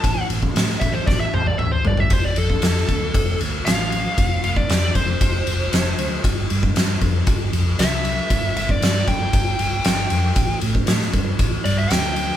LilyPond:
<<
  \new Staff \with { instrumentName = "Lead electric guitar" } { \time 4/4 \key d \dorian \tempo 4 = 116 a''8 r4 e''16 c''16 d''16 e''16 c''16 d''16 e''16 c''16 d''16 e''16 | c''16 d''16 a'2 r8 f''4~ | f''8 f''16 d''8. c''2~ c''8 | r2. e''4~ |
e''8 e''16 d''8. g''2~ g''8~ | g''8 r2 d''16 e''16 g''4 | }
  \new Staff \with { instrumentName = "Fingered electric bass" } { \clef bass \time 4/4 \key d \dorian a,,8 a,,8 a,8 a,,8 a,,8 a,,8 a,,8 g,8 | f,,8 f,8 f,8 d,8 f,,8 d,8 a,,4 | f,,8 f,,8 f,8 f,,8 f,,8 f,,8 f,,8 d,8 | g,,8 g,8 g,8 f,8 g,,8 f,8 c,4 |
g,,8 g,,8 g,8 g,,8 g,,8 g,,8 g,,8 f,8 | a,,8 a,8 a,8 g,8 a,,8 g,8 d,4 | }
  \new DrumStaff \with { instrumentName = "Drums" } \drummode { \time 4/4 <bd cymr>8 cymr16 bd16 <cymr sn>16 sn16 <bd cymr>8 <bd sn>8 tommh16 tommh16 toml8 tomfh16 tomfh16 | <bd cymr>8 cymr16 bd16 <cymr sn>16 sn16 <bd cymr>8 <bd cymr>8 cymr8 <cymr sn>8 cymr8 | <bd cymr>8 cymr16 bd16 <cymr sn>8 <bd cymr>8 <bd cymr>8 cymr8 <cymr sn>8 cymr8 | <bd cymr>8 cymr16 bd16 <cymr sn>8 <bd cymr>8 <bd cymr>8 cymr8 <cymr sn>8 cymr8 |
<bd cymr>8 cymr16 bd16 <cymr sn>8 <bd cymr>8 <bd cymr>8 cymr8 <cymr sn>8 cymr8 | <bd cymr>8 cymr16 bd16 <cymr sn>16 sn16 <bd cymr>8 <bd cymr>8 cymr8 <cymr sn>8 cymr8 | }
>>